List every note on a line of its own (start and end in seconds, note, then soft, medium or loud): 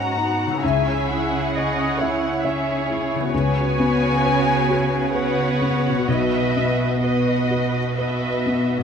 0.00 0.58 G#2 soft
0.00 0.59 G#2 soft
0.00 1.54 B3 soft
0.00 0.16 C#4 soft
0.00 0.17 D#4 soft
0.00 0.62 F#4 soft
0.00 0.54 G#4 soft
0.00 0.65 G#4 soft
0.00 0.65 D#5 soft
0.00 0.62 F#5 soft
0.00 0.63 A#5 medium
0.16 0.63 B3 soft
0.16 0.63 D#4 soft
0.46 3.14 C#3 soft
0.50 3.30 E4 soft
0.55 3.33 G#4 soft
0.60 3.29 C#3 soft
0.60 1.53 C#4 soft
0.60 1.98 E4 soft
0.60 2.42 G#4 soft
0.60 3.35 E5 soft
0.60 1.55 E5 soft
0.64 3.29 C#2 soft
0.64 1.10 G#5 medium
1.11 1.83 E4 soft
1.11 2.42 F#5 medium
1.56 2.42 C#5 soft
1.56 2.00 D#5 soft
1.56 2.27 D#5 soft
2.00 2.42 E4 soft
2.00 2.43 E5 soft
2.43 3.32 C#4 soft
2.43 3.31 E4 soft
2.43 3.30 G#4 soft
2.43 3.30 C#5 soft
2.43 3.15 E5 soft
2.43 2.88 E5 soft
2.90 3.33 E4 soft
3.15 6.02 C#3 soft
3.20 5.93 B3 soft
3.25 5.97 F#4 soft
3.29 5.10 F#4 soft
3.29 5.10 B4 medium
3.29 7.19 C#5 soft
3.29 5.10 C#5 medium
3.29 5.10 G#5 medium
3.33 6.04 C#2 soft
3.33 6.04 C#3 medium
3.33 5.11 B3 soft
3.79 4.51 B3 soft
4.25 4.96 B4 soft
4.70 5.42 F#4 soft
5.14 6.06 B3 soft
5.14 6.06 F#4 soft
5.14 6.05 B4 medium
5.14 5.89 B4 soft
5.14 6.05 C#5 medium
5.14 6.08 F#5 medium
5.62 6.08 B3 soft
5.90 8.83 B2 soft
5.94 8.81 B3 soft
5.99 8.83 F#4 soft
6.07 8.83 B1 soft
6.07 8.70 B2 soft
6.07 7.01 B3 soft
6.07 7.01 F#4 soft
6.07 7.00 B4 soft
6.07 7.01 D#5 soft
6.07 7.03 E5 medium
6.56 7.32 B3 soft
7.02 7.96 B3 soft
7.02 7.95 F#4 soft
7.02 7.95 B4 soft
7.02 7.79 B4 soft
7.02 7.95 D#5 soft
7.02 7.98 D#5 soft
7.51 8.27 F#4 soft
7.97 8.73 B3 soft
7.97 8.73 F#4 soft
7.97 8.72 B4 soft
7.97 8.75 B4 soft
7.97 8.72 D#5 soft
7.97 8.83 E5 soft
8.46 8.83 B3 soft
8.77 8.83 G#2 soft